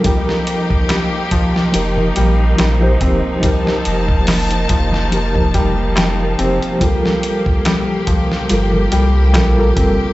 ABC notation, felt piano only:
X:1
M:4/4
L:1/8
Q:"Swing 16ths" 1/4=71
K:Fmix
V:1 name="Felt piano" clef=bass
G, z2 F,2 G, G, C | G, z2 F,2 G, G, C | G, z G, F,2 G, G, C |]